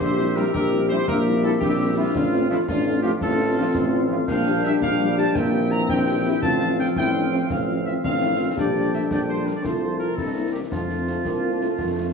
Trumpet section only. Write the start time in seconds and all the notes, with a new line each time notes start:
0.00 C5
0.35 A#4
0.54 A#4
0.89 C5
1.08 A#4
1.44 A4
1.60 G4
1.97 F4
2.51 E4
2.68 F4
3.03 G4
3.22 A4
4.28 F5
4.65 E5
4.82 F5
5.19 A5
5.36 G5
5.71 A#5
5.90 G5
6.42 A5
6.79 G5
6.97 G5
7.50 F5
7.85 E5
8.04 F5
8.58 D5
8.94 E5
9.11 D5
9.29 C5
9.46 A#4
9.56 D5
9.64 C5
9.99 A#4
10.16 A4
10.53 G4
10.71 F4